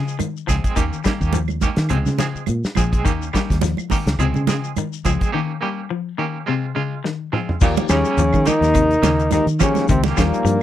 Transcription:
Already playing: clean electric guitar C#3 F3 G#3 G#4
0.08 shekere
0.19 clean electric guitar D#3, closed hi-hat, high conga, claves, shekere
0.37 shekere
0.47 fingered electric bass C#2, clean electric guitar F3 G#3 C4 G#4, kick, snare, closed hi-hat, claves, shekere
0.64 clean electric guitar G#3 C4 G#4, kick, closed hi-hat, shekere
0.76 fingered electric bass D#2, clean electric guitar D#3 A#3 C#4 G4, muted clean electric guitar stroke, kick, closed hi-hat, shekere
0.93 shekere
1.04 clean electric guitar D#3 G3 A#3 C#4 G4, muted fingered electric bass stroke, kick, snare, closed hi-hat, claves, shekere
1.20 fingered electric bass D#2, clean electric guitar A#3 C#4 G4, kick, shekere
1.33 clean electric guitar F3, closed hi-hat, high conga, shekere
1.48 high conga, claves, shekere
1.61 clean electric guitar D#3 A#3 C#4 G4, kick, closed hi-hat, high conga, shekere
1.76 fingered electric bass D#3, snare, closed hi-hat, shekere
1.89 fingered electric bass C#2, clean electric guitar C3 F3 G#3 C4, muted clean electric guitar stroke, closed hi-hat, claves, shekere
2.06 fingered electric bass C#3, snare, high conga, shekere
2.18 clean electric guitar C#3 F3 G#3 C4 G#4, snare, closed hi-hat, high conga, shekere
2.35 muted fingered electric bass stroke, shekere
2.46 fingered electric bass A#2, closed hi-hat, high conga, claves, shekere
2.64 muted fingered electric bass stroke, snare, shekere
2.75 fingered electric bass A#1, clean electric guitar F3 G#3 C4 G#4, kick, closed hi-hat, high conga, claves, shekere
2.92 clean electric guitar G#3 C4 G#4, kick, closed hi-hat, shekere
3.05 fingered electric bass D#2, clean electric guitar D#3 A#3 C#4 G4, kick, closed hi-hat, shekere
3.22 shekere
3.33 clean electric guitar D#3 G3 A#3 C#4 G4, kick, snare, closed hi-hat, claves, shekere
3.50 fingered electric bass D#2, kick, snare, closed hi-hat, shekere
3.61 clean electric guitar F3, snare, closed hi-hat, high conga, shekere
3.77 high conga, claves, shekere
3.90 clean electric guitar D#3 A#3 C#4 G4, muted clean electric guitar stroke, muted fingered electric bass stroke, kick, open hi-hat, high conga, shekere
4.06 fingered electric bass C#2, snare, closed hi-hat, shekere
4.19 fingered electric bass C#2, clean electric guitar C3 F3 G#3 C4 G#4, closed hi-hat, claves, shekere
4.34 fingered electric bass C#3, high conga, shekere
4.47 clean electric guitar C#3 F3 G#3 C4 G#4, snare, closed hi-hat, high conga, shekere
4.64 shekere
4.76 clean electric guitar D#3, closed hi-hat, high conga, claves, shekere
4.93 shekere
5.05 fingered electric bass C#2, clean electric guitar F3 G#3 C4 G#4, kick, closed hi-hat, high conga, claves, shekere
5.19 clean electric guitar G#3 C4 G#4, kick, closed hi-hat, shekere
5.32 clean electric guitar D#3 A#3 C#4 G4
5.61 clean electric guitar G3 A#3 C#4 G4
5.90 clean electric guitar F3
6.18 clean electric guitar D#3 A#3 C#4 G4
6.46 clean electric guitar C3 G#3 C4 F4
6.75 clean electric guitar C#3 G#3 F4
7.04 clean electric guitar D#3, snare
7.32 clean electric guitar F3 G#3 C4 F4, mid tom
7.49 floor tom
7.61 fingered electric bass D#2, tenor saxophone A#2, clean electric guitar D#3 F3 A#3 C#4 G4, tine electric piano F3 A#3 D#4 G4, trombone A#3, kick, crash, shekere
7.77 closed hi-hat, high conga, shekere
7.89 fingered electric bass D#2, tenor saxophone C#3, clean electric guitar F3 G3 A#3 C#4 G4, trombone C#4, snare, closed hi-hat, claves, shekere
8.04 clean electric guitar A#3 C#4 G4, closed hi-hat, shekere
8.17 fingered electric bass D#2, clean electric guitar F3, closed hi-hat, shekere
8.33 fingered electric bass D#3, kick, high conga, claves, shekere
8.46 clean electric guitar D#3 F3 A#3 C#4 G4, tenor saxophone D#3, trombone D#4, closed hi-hat, high conga, low conga, shekere
8.61 fingered electric bass D#2, tine electric piano F3 A#3 D#4 G4, snare, closed hi-hat, shekere
8.74 clean electric guitar C3, kick, closed hi-hat, claves, shekere
8.91 closed hi-hat, shekere
9.02 fingered electric bass D#2, clean electric guitar C#3 F3 A#3 C#4 G4, snare, closed hi-hat, high conga, shekere
9.19 closed hi-hat, shekere
9.31 clean electric guitar D#3, tenor saxophone D#3, tine electric piano F3 A#3 D#4 G4, trombone D#4, snare, closed hi-hat, high conga, claves, shekere
9.46 fingered electric bass D#3, closed hi-hat, shekere
9.59 tenor saxophone C#3, clean electric guitar F3 A#3 C#4 G4, tine electric piano F3 A#3 D#4 G4, trombone C#4, kick, closed hi-hat, low conga, claves, shekere
9.75 snare, closed hi-hat, high conga, shekere
9.88 fingered electric bass C#2, tenor saxophone C3, clean electric guitar D#3, trombone C4, kick, closed hi-hat, shekere
10.04 clean electric guitar A#3 C#4 G4, snare, high conga, shekere
10.16 fingered electric bass D#2, clean electric guitar F3 G3 A#3 C#4 G4, tine electric piano F3 A#3 D#4 G4, trombone A#3, kick, snare, closed hi-hat, claves, shekere
10.21 tenor saxophone A#2
10.34 closed hi-hat, shekere
10.44 fingered electric bass G2, clean electric guitar F3, closed hi-hat, shekere

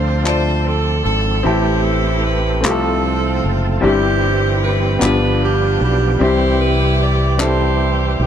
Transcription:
Already playing: fingered electric bass D2, upright piano D3 D4 F4 A4 C5, tonewheel organ F3 C4 D4 A4, saxophone section C4 F4 C5
0.24 upright piano D4 F4 A4 D5, saxophone section C5, clap
0.66 saxophone section A4
1.05 fingered electric bass G#1, saxophone section A4
1.43 fingered electric bass A1, upright piano A2 C4 E4 G4 A4, tonewheel organ E3 A3 C4 G4, saxophone section C4 E4 G4
1.85 saxophone section A4
2.25 saxophone section B4
2.61 fingered electric bass C2, upright piano C3 A3 C4 F4, tonewheel organ F3 A3 C4 G#4
2.65 saxophone section C4 A4, upright piano G4, clap
2.69 saxophone section F4, tonewheel organ A4, upright piano A4
3.44 fingered electric bass F#1
3.81 fingered electric bass G1, upright piano G2 G3 C4 E4 G4, tonewheel organ E3 G3 C4 G4, saxophone section G4
3.87 saxophone section C4 E4
4.64 saxophone section B4
4.99 fingered electric bass G1, upright piano G2 B3 D4 F4, tonewheel organ F3 B3 D4 G4, clap
5.03 upright piano G4, saxophone section B4
5.07 saxophone section D4 F4
5.45 saxophone section G4
5.81 fingered electric bass B1, saxophone section G4
6.19 fingered electric bass C2, upright piano C3 G3 C4 E4, tonewheel organ E3 G3 C4 G4, saxophone section C5
6.23 saxophone section E4 G4, upright piano G4
6.61 saxophone section B4
7.04 saxophone section D5
7.37 upright piano G3 C4 E4 A4, clap
7.43 saxophone section E4 G4 C5
8.20 fingered electric bass B1

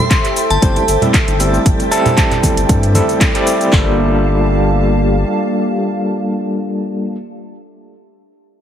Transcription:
Already playing: analog synth pad G4 C5 E5 G5, ambient pad A4 E5 A5 C6, string machine G5 A6
0.00 synth bell C6
0.11 kick, clap, closed hi-hat, shaker
0.25 clap, closed hi-hat, shaker
0.36 open hi-hat, shaker
0.50 analog synth bass G1, synth bell A5, closed hi-hat, shaker
0.62 analog synth bass G1, tine electric piano G3 A3 C4 E4 C5, kick, closed hi-hat, shaker
0.76 closed hi-hat, muted conga, high conga, shaker
0.88 analog synth bass G1, open hi-hat, shaker
1.02 tine electric piano G3 A3 C4 E4 A4, closed hi-hat, low conga, shaker
1.14 kick, clap, closed hi-hat, shaker
1.28 analog synth bass G1, closed hi-hat, muted conga, shaker
1.40 tine electric piano G3 A3 C4 E4 A4, open hi-hat, shaker
1.54 shaker
1.66 analog synth bass G1, kick, closed hi-hat, shaker
1.80 closed hi-hat, muted conga, shaker
1.91 tine electric piano G3 A3 C4 E4 A4, synth bell A5, open hi-hat, shaker
2.06 closed hi-hat, low conga, shaker
2.17 kick, clap, closed hi-hat, shaker
2.32 clap, closed hi-hat, low conga, shaker
2.43 kick, open hi-hat, high conga, shaker
2.57 analog synth bass G1, closed hi-hat, shaker
2.69 analog synth bass G2, kick, closed hi-hat, shaker
2.83 closed hi-hat, shaker
2.95 tine electric piano G3 A3 C4 E4 A4, open hi-hat, muted conga, high conga, shaker
3.09 closed hi-hat, shaker
3.21 kick, clap, closed hi-hat, shaker
3.35 tine electric piano G3 A3 C4 E4 D5, clap, closed hi-hat, shaker
3.47 open hi-hat, shaker
3.61 closed hi-hat, shaker
3.72 analog synth bass G1, tine electric piano G3 A#3 D4 F4, analog synth pad A#3 G4 F5 A5, ambient pad G4, kick, clap
3.81 ambient pad D5
3.89 ambient pad A5

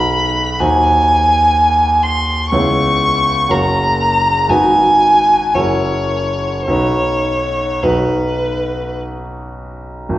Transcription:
Already playing: grand piano B1 D#4 F#4 B4, violin B5
0.60 grand piano D#2 D#4 F#4 C5, violin G#5
2.03 violin C6
2.50 grand piano C#2 B3 E4 C#5, violin C#6
3.49 grand piano F#1 A#3 F#4 C#5, violin A#5
4.49 grand piano G#1 D#4 F#4 B4, violin G#5
5.55 grand piano F#1 E4 F#4 A#4, violin C#5
6.66 grand piano B1 D#4 F#4 B4, violin C#5
7.82 grand piano B1 D#4 F#4 B4, violin B4
10.09 grand piano G#1

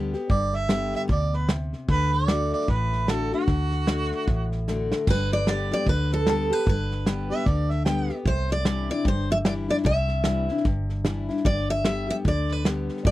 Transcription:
Already playing: fingered electric bass D2, steel-string acoustic guitar D3 G3 B3 G4
0.14 steel-string acoustic guitar B3 G4, snare
0.29 fingered electric bass G1, steel-string acoustic guitar G2, harmonica D5, kick, snare
0.53 harmonica E5, snare
0.69 steel-string acoustic guitar D3 G3 B3 G4, snare, hi-hat pedal
0.93 harmonica E5, snare
1.08 fingered electric bass D2, steel-string acoustic guitar B2, harmonica D5, kick, snare
1.33 harmonica B4, snare
1.49 steel-string acoustic guitar C3, snare, hi-hat pedal
1.73 snare
1.88 fingered electric bass D2, steel-string acoustic guitar D3, harmonica B4, kick, snare
2.13 harmonica D5, snare
2.28 steel-string acoustic guitar D3 A3 D4 F#4, snare, hi-hat pedal
2.53 harmonica D5, snare
2.61 snare
2.68 fingered electric bass A1, steel-string acoustic guitar A2, harmonica B4, kick, snare
2.93 snare
3.07 steel-string acoustic guitar D3 A3 D4 F#4, harmonica A4, snare, hi-hat pedal
3.32 steel-string acoustic guitar D4 F#4, harmonica F#4, snare
3.40 snare
3.48 fingered electric bass D2, steel-string acoustic guitar D3, kick, snare
3.72 snare
3.87 steel-string acoustic guitar D3 A3 D4 F#4, snare, hi-hat pedal
4.12 snare
4.27 fingered electric bass A1, steel-string acoustic guitar A2, kick, snare
4.52 snare
4.68 steel-string acoustic guitar D3 A3 D4 F#4, snare, hi-hat pedal
4.92 snare
5.07 fingered electric bass G1, steel-string acoustic guitar G2 B4, kick, snare, crash
5.32 steel-string acoustic guitar D5, snare
5.47 steel-string acoustic guitar D3 G3 B3 G4 D5, snare, hi-hat pedal
5.71 steel-string acoustic guitar B3 G4 D5, snare
5.86 fingered electric bass D2, steel-string acoustic guitar D3 B4, kick, snare
6.11 steel-string acoustic guitar A4, snare
6.26 steel-string acoustic guitar D3 G3 B3 G4 A4, snare, hi-hat pedal
6.50 steel-string acoustic guitar B3 G4 B4, snare
6.59 snare
6.67 fingered electric bass G1, steel-string acoustic guitar G2 B4, kick, snare
6.91 snare
7.05 steel-string acoustic guitar D3 G3 B3 G4, snare, hi-hat pedal
7.30 steel-string acoustic guitar B3 G4, harmonica E5, snare
7.39 snare
7.46 fingered electric bass D2, steel-string acoustic guitar D3, harmonica D5, kick, snare
7.70 harmonica E5, snare
7.85 steel-string acoustic guitar D3 G3 B3 G4, harmonica G5, snare, hi-hat pedal
8.09 steel-string acoustic guitar B3 G4, snare
8.25 fingered electric bass C2, steel-string acoustic guitar C3 C5, kick, snare
8.49 steel-string acoustic guitar D5, snare
8.65 steel-string acoustic guitar E3 G3 D4 E4, snare, hi-hat pedal
8.89 steel-string acoustic guitar D4 E4 D5, snare
9.05 fingered electric bass G1, steel-string acoustic guitar G2 C5, kick, snare
9.30 steel-string acoustic guitar E5, snare
9.44 steel-string acoustic guitar E3 G3 D4 E4 D5, snare, hi-hat pedal
9.68 steel-string acoustic guitar D4 E4 D5, snare
9.77 snare
9.84 fingered electric bass C2, steel-string acoustic guitar C3 E5, kick, snare
10.08 snare
10.24 steel-string acoustic guitar E3 G3 D4 E4, snare, hi-hat pedal
10.49 steel-string acoustic guitar D4 E4, snare
10.57 snare
10.65 fingered electric bass G1, steel-string acoustic guitar G2, kick, snare
10.89 snare
11.05 steel-string acoustic guitar E3 G3 D4 E4, snare, hi-hat pedal
11.29 steel-string acoustic guitar D4 E4, snare
11.37 snare
11.45 fingered electric bass G1, steel-string acoustic guitar G2 D5, kick, snare
11.69 steel-string acoustic guitar E5, snare
11.84 steel-string acoustic guitar D3 G3 B3 G4 E5, snare, hi-hat pedal
12.07 steel-string acoustic guitar B3 G4 E5, snare
12.25 fingered electric bass D2, steel-string acoustic guitar D3 D5, kick, snare
12.49 steel-string acoustic guitar B4, snare
12.64 steel-string acoustic guitar D3 G3 B3 G4, snare, hi-hat pedal
12.89 snare
12.97 snare
13.05 fingered electric bass G1, steel-string acoustic guitar G2 D5, kick, snare

